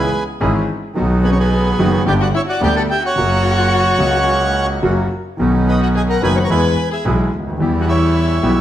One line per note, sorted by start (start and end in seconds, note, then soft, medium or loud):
0.00 0.24 B3 medium
0.00 0.23 G#4 medium
0.00 0.24 B4 loud
0.40 0.64 G#1 medium
0.40 0.64 G#2 medium
0.40 0.64 E3 medium
0.40 0.64 G#3 medium
0.40 0.64 C#4 medium
0.40 0.64 E4 medium
0.40 0.64 G#4 medium
0.94 1.75 B1 loud
0.94 1.75 B1 medium
0.94 1.75 B2 medium
0.94 1.74 D#3 medium
0.94 1.74 F#3 medium
0.94 1.74 B3 medium
0.94 1.75 B3 medium
0.94 1.75 D#4 medium
0.94 1.75 F#4 medium
0.98 1.76 F#4 medium
1.23 1.29 B3 medium
1.23 1.31 G#4 medium
1.23 1.30 B4 medium
1.30 1.37 C#4 medium
1.30 1.38 C#5 medium
1.38 2.03 B3 medium
1.38 2.04 G#4 medium
1.38 2.03 B4 medium
1.78 2.02 F#1 medium
1.78 2.02 F#2 medium
1.78 2.02 D#3 medium
1.78 2.02 F#3 medium
1.78 2.02 B3 medium
1.78 2.02 D#4 medium
1.78 2.02 F#4 medium
2.06 2.30 G1 medium
2.06 2.30 G1 loud
2.06 2.30 G2 medium
2.06 2.30 D3 medium
2.06 2.30 G3 medium
2.06 2.30 B3 medium
2.06 2.30 D4 medium
2.06 2.30 G4 medium
2.06 2.13 G4 medium
2.06 2.30 G4 medium
2.06 2.14 D5 medium
2.06 2.14 G5 medium
2.20 2.27 F#4 medium
2.20 2.28 D5 medium
2.20 2.28 F#5 medium
2.34 2.41 E4 medium
2.34 2.42 C#5 medium
2.34 2.42 E5 loud
2.48 2.61 F#4 medium
2.48 2.62 D5 medium
2.48 2.61 F#5 loud
2.61 2.85 D2 medium
2.61 2.85 D3 medium
2.61 2.85 G3 medium
2.61 2.85 B3 medium
2.61 2.85 D4 medium
2.61 2.85 G4 medium
2.61 2.75 G4 medium
2.61 2.85 G4 medium
2.61 2.76 D5 medium
2.61 2.75 G5 loud
2.76 2.82 A4 medium
2.76 2.83 F#5 medium
2.76 2.82 A5 medium
2.90 3.03 G4 medium
2.90 3.03 E5 medium
2.90 3.03 G5 loud
3.04 4.66 F#4 medium
3.04 4.67 C#5 medium
3.04 4.66 F#5 loud
3.15 3.96 F#1 loud
3.15 3.96 F#2 medium
3.15 3.95 C#3 medium
3.15 3.96 F#3 medium
3.15 3.95 A#3 medium
3.15 3.96 A#3 medium
3.15 3.96 C#4 medium
3.15 3.96 F#4 medium
3.20 3.97 F#4 medium
3.98 4.79 C#2 medium
3.98 3.99 C#3 medium
3.98 4.79 C#3 medium
3.98 4.78 F#3 medium
3.98 4.79 A#3 medium
3.98 4.79 C#4 medium
3.98 4.79 F#4 medium
3.98 4.80 F#4 medium
4.83 5.06 F#1 medium
4.83 5.06 F#2 medium
4.83 5.06 C#3 medium
4.83 5.06 F#3 medium
4.83 5.06 A#3 medium
4.83 5.07 C#4 medium
4.83 5.06 F#4 medium
4.83 5.07 F#4 medium
5.37 6.18 B1 loud
5.37 6.18 B1 medium
5.37 6.18 B2 medium
5.37 6.17 D#3 medium
5.37 6.18 B3 medium
5.37 6.18 C#4 medium
5.37 6.18 D#4 medium
5.41 6.19 F#4 medium
5.67 5.80 D#4 medium
5.67 5.81 B4 medium
5.67 5.81 D#5 medium
5.81 5.87 F#4 medium
5.81 5.88 D#5 medium
5.81 5.88 F#5 medium
5.95 6.01 G#4 medium
5.95 6.02 D#5 medium
5.95 6.02 G#5 medium
6.08 6.21 A#4 medium
6.08 6.22 F#5 medium
6.08 6.22 A#5 medium
6.22 6.45 F#1 medium
6.22 6.46 F#1 medium
6.22 6.45 F#2 medium
6.22 6.45 D#3 medium
6.22 6.45 B3 medium
6.22 6.45 C#4 medium
6.22 6.46 C#4 medium
6.22 6.46 D#4 medium
6.22 6.46 F#4 medium
6.22 6.35 B4 medium
6.22 6.36 G#5 medium
6.22 6.37 B5 medium
6.35 6.42 B4 medium
6.35 6.37 C#5 medium
6.40 6.49 C#5 medium
6.40 6.43 B5 medium
6.44 6.50 A#5 medium
6.44 6.50 C#6 medium
6.49 6.73 E2 medium
6.49 6.73 E3 medium
6.49 6.73 G#3 medium
6.49 6.73 B3 medium
6.49 6.73 E4 medium
6.49 6.73 G#4 medium
6.49 6.88 B4 medium
6.49 6.89 G#5 medium
6.49 6.89 B5 medium
6.91 7.03 G#4 medium
6.91 7.05 E5 medium
6.91 7.05 G#5 medium
7.05 7.28 B1 loud
7.05 7.28 B1 medium
7.05 7.29 B2 medium
7.05 7.28 E3 medium
7.05 7.28 G#3 medium
7.05 7.29 G#3 medium
7.05 7.28 B3 medium
7.05 7.29 B3 medium
7.05 7.28 E4 medium
7.05 7.29 G#4 medium
7.33 7.60 D2 medium
7.40 7.47 C#2 medium
7.47 7.54 D2 medium
7.53 7.60 D#2 medium
7.59 8.39 E2 medium
7.59 8.39 E2 loud
7.59 8.39 E3 medium
7.59 8.39 G3 medium
7.59 8.39 B3 medium
7.59 8.40 B3 medium
7.59 8.39 E4 medium
7.59 8.40 G4 medium
7.81 7.87 F#4 medium
7.81 7.88 F#5 medium
7.87 8.61 E4 medium
7.87 8.61 C#5 medium
7.87 8.61 E5 medium
8.42 8.61 B1 medium
8.42 8.61 B2 medium
8.42 8.61 E3 medium
8.42 8.61 G3 medium
8.42 8.61 B3 medium
8.42 8.61 E4 medium
8.42 8.61 G4 medium